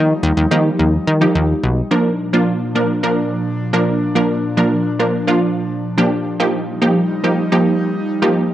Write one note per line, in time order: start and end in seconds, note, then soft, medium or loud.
0.00 0.13 D#3 loud
0.00 1.87 F3 medium
0.00 1.87 G3 medium
0.00 1.87 D#4 medium
0.23 0.32 D#2 loud
0.37 0.46 D#2 loud
0.51 0.70 D#3 loud
0.51 0.84 F3 medium
0.51 0.84 A#3 medium
0.51 0.84 D#4 medium
0.51 0.84 G4 medium
0.79 0.98 D#2 loud
1.07 1.26 D#3 loud
1.21 1.54 F3 medium
1.21 1.54 A#3 medium
1.21 1.54 D#4 medium
1.21 1.54 G4 medium
1.35 1.54 D#2 loud
1.64 1.82 B1 medium
1.91 6.36 A#2 medium
1.91 2.11 F3 medium
1.91 8.54 F3 medium
1.91 2.11 A#3 medium
1.91 2.11 D4 medium
1.91 6.36 D4 medium
1.91 2.11 A#4 medium
2.33 2.53 F3 medium
2.33 2.53 A#3 medium
2.33 2.53 D4 medium
2.33 2.53 F4 medium
2.75 2.89 F3 medium
2.75 2.89 A#3 medium
2.75 2.89 D4 medium
2.75 2.89 A#4 medium
3.03 3.36 F3 medium
3.03 3.36 A#3 medium
3.03 3.37 D4 medium
3.03 3.37 A#4 medium
3.73 3.93 F3 medium
3.73 3.93 A#3 medium
3.73 3.93 D4 medium
3.73 3.93 A#4 loud
4.15 4.35 F3 medium
4.15 4.35 A#3 medium
4.15 4.36 D4 medium
4.15 4.36 A#4 loud
4.57 4.77 F3 medium
4.57 4.77 A#3 medium
4.57 4.77 D4 medium
4.57 4.78 A#4 medium
5.00 5.13 F3 medium
5.00 5.13 A#3 medium
5.00 5.13 D4 medium
5.00 5.13 A#4 medium
5.27 5.61 F3 medium
5.27 5.61 A#3 medium
5.27 5.61 D4 medium
5.27 5.61 F4 medium
5.98 6.18 F3 medium
5.98 6.18 A#3 medium
5.98 6.18 D4 medium
5.98 6.18 G4 loud
6.40 6.60 F3 medium
6.40 8.54 G3 medium
6.40 6.60 A#3 medium
6.40 8.54 D#4 medium
6.40 6.60 D#4 medium
6.40 6.60 G4 loud
6.81 7.02 F3 medium
6.81 7.02 A#3 medium
6.81 7.02 D#4 medium
6.81 7.02 G4 medium
7.24 7.37 F3 medium
7.24 7.37 A#3 medium
7.24 7.37 D#4 medium
7.24 7.37 G4 medium
7.52 7.85 F3 medium
7.52 7.85 A#3 medium
7.52 7.85 D#4 medium
7.52 7.85 G4 medium
8.22 8.42 F3 medium
8.22 8.42 A#3 medium
8.22 8.42 D#4 medium
8.22 8.42 G4 medium